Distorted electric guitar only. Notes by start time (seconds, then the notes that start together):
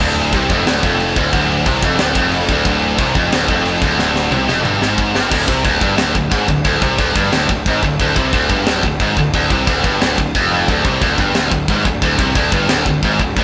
0.02 D2
0.35 C3
0.52 F2
0.68 D2
0.85 F2
1.18 D2
1.34 D2
1.67 C3
1.84 F2
2.01 D2
2.18 F2
2.51 D2
2.67 D2
2.99 C3
3.16 F2
3.32 D2
3.50 F2
3.83 D2
3.99 D2
4.32 C3
4.49 F2
4.64 G2
4.82 G#2
5.15 G2
5.32 D2
5.48 C3
5.65 D2
5.82 G2
5.97 D2
6.15 D2
6.31 G#2
6.48 D2
6.65 D2
6.83 C3
7.00 D2
7.17 G2
7.33 D2
7.51 D2
7.68 G#2
7.84 D2
8.01 D2
8.17 C3
8.34 D2
8.50 G2
8.68 D2
8.85 D2
9.01 G#2
9.19 D2
9.34 D2
9.51 C3
9.67 D2
9.85 G2
10.02 D2
10.20 D2
10.35 F2
10.69 D2
10.86 C3
11.02 D2
11.19 G2
11.36 D2
11.52 D2
11.70 G#2
11.86 D2
12.02 D2
12.19 C3
12.36 D2
12.53 G2
12.70 D2
12.87 D2
13.05 G#2
13.21 D2
13.38 D2